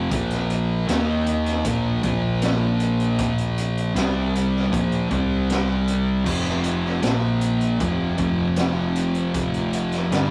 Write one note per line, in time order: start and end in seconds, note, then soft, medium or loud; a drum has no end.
0.00 0.10 F2 medium
0.00 0.10 C3 loud
0.00 0.11 F3 loud
0.11 0.85 A#1 medium
0.11 0.87 A#2 loud
0.11 0.87 F3 loud
0.11 0.88 A#3 loud
0.11 kick loud
0.11 closed hi-hat loud
0.30 snare soft
0.30 closed hi-hat medium
0.50 closed hi-hat medium
0.88 1.61 D#2 medium
0.88 1.64 D#3 medium
0.88 1.64 A#3 loud
0.88 1.64 D#4 loud
0.88 snare loud
0.88 closed hi-hat loud
1.26 closed hi-hat medium
1.46 snare soft
1.46 closed hi-hat medium
1.65 2.01 A#1 loud
1.65 2.02 A#2 medium
1.65 2.02 F3 loud
1.65 2.03 A#3 loud
1.65 kick loud
1.65 closed hi-hat loud
2.03 3.91 A#1 medium
2.03 3.94 A#2 medium
2.03 3.94 F3 loud
2.03 3.94 A#3 loud
2.03 kick loud
2.03 closed hi-hat medium
2.42 snare loud
2.42 closed hi-hat loud
2.80 closed hi-hat medium
3.00 closed hi-hat soft
3.19 kick loud
3.19 closed hi-hat loud
3.38 closed hi-hat medium
3.58 closed hi-hat medium
3.77 closed hi-hat medium
3.95 4.68 C2 medium
3.95 4.71 C3 medium
3.95 4.71 G3 loud
3.95 4.71 C4 loud
3.95 snare loud
3.95 closed hi-hat loud
4.35 closed hi-hat medium
4.56 snare soft
4.71 5.08 A#1 loud
4.71 5.09 A#2 loud
4.71 5.09 F3 loud
4.71 5.10 A#3 loud
4.71 kick loud
4.71 closed hi-hat loud
4.92 closed hi-hat soft
5.10 6.23 C2 medium
5.10 6.25 C3 medium
5.10 6.25 G3 medium
5.10 6.25 C4 loud
5.10 kick loud
5.10 closed hi-hat medium
5.50 snare loud
5.50 closed hi-hat loud
5.88 closed hi-hat medium
6.25 6.99 F1 medium
6.25 7.02 F2 loud
6.25 7.02 C3 loud
6.25 7.02 F3 loud
6.25 kick loud
6.25 crash loud
6.45 snare soft
6.45 closed hi-hat soft
6.64 closed hi-hat medium
6.85 snare soft
7.02 7.76 A#1 medium
7.02 7.79 A#2 loud
7.02 7.79 F3 medium
7.02 7.79 A#3 loud
7.02 snare loud
7.02 closed hi-hat loud
7.41 closed hi-hat medium
7.61 closed hi-hat soft
7.80 8.16 F1 loud
7.80 8.17 F2 loud
7.80 8.18 C3 medium
7.80 8.18 F3 medium
7.80 kick loud
7.80 closed hi-hat loud
8.18 10.08 F1 loud
8.18 10.10 F2 loud
8.18 10.11 C3 loud
8.18 10.11 F3 loud
8.18 kick loud
8.18 closed hi-hat medium
8.56 snare loud
8.56 closed hi-hat loud
8.96 closed hi-hat medium
9.14 closed hi-hat soft
9.34 kick loud
9.34 closed hi-hat loud
9.54 closed hi-hat medium
9.73 closed hi-hat medium
9.92 snare soft
9.92 closed hi-hat medium
10.11 10.30 G1 loud
10.11 10.30 G2 medium
10.11 10.30 D3 medium
10.11 10.30 G3 loud
10.11 snare loud
10.11 closed hi-hat loud